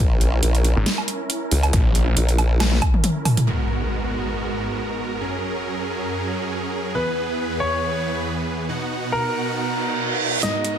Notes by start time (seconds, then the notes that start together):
Already playing: C#4 E4 A#4
0.00 A#1
0.21 closed hi-hat
0.43 A#1, closed hi-hat
0.55 closed hi-hat
0.65 closed hi-hat
0.76 G#1
0.86 snare, closed hi-hat
0.98 low woodblock
1.08 closed hi-hat
1.30 closed hi-hat
1.51 C#2, open hi-hat
1.63 closed hi-hat, low woodblock
1.73 A#1, kick, closed hi-hat
1.95 A#1, closed hi-hat
2.17 A#1, closed hi-hat
2.29 closed hi-hat
2.38 closed hi-hat, low woodblock
2.60 snare, closed hi-hat, high tom, low woodblock
2.72 snare, high tom
2.82 kick, closed hi-hat, low woodblock
2.94 mid tom
3.04 closed hi-hat, mid tom
3.25 mid tom, open hi-hat, low woodblock
3.37 closed hi-hat, mid tom
3.47 G#2 G#3 B3 F#4 A#4, impact
5.21 F#2 F#3 C#4 G#4
6.95 E2 E3 B3 B4
7.60 C#5
8.69 B2 B3 D#4 F#4 F#5
9.12 A#4
9.56 reverse cymbal
10.43 G#2 G#3 B3 D#4 F#4 A#4 D#5, snare, closed hi-hat, riser
10.65 closed hi-hat